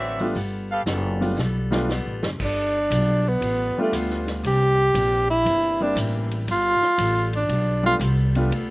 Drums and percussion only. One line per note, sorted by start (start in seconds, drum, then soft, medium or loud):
0.19 open hi-hat soft
0.36 kick soft
0.36 open hi-hat soft
0.86 snare medium
0.86 closed hi-hat medium
1.22 open hi-hat soft
1.38 snare soft
1.72 snare medium
1.89 snare medium
2.23 snare medium
2.40 kick medium
2.40 crash medium
2.91 kick soft
2.91 hi-hat pedal medium
2.91 ride medium
3.42 kick soft
3.42 ride medium
3.93 kick soft
3.93 hi-hat pedal medium
3.93 ride medium
4.10 snare soft
4.27 snare soft
4.27 ride soft
4.44 kick soft
4.44 ride medium
4.95 kick soft
4.95 hi-hat pedal medium
4.95 ride medium
5.46 kick soft
5.46 ride medium
5.96 kick soft
5.96 hi-hat pedal medium
5.96 ride medium
6.31 ride soft
6.48 kick soft
6.48 ride medium
6.82 snare soft
6.98 kick soft
6.98 hi-hat pedal medium
6.98 ride medium
7.33 ride soft
7.49 kick soft
7.49 ride medium
8.00 kick soft
8.00 hi-hat pedal medium
8.00 ride medium
8.35 ride soft
8.51 kick soft
8.51 ride medium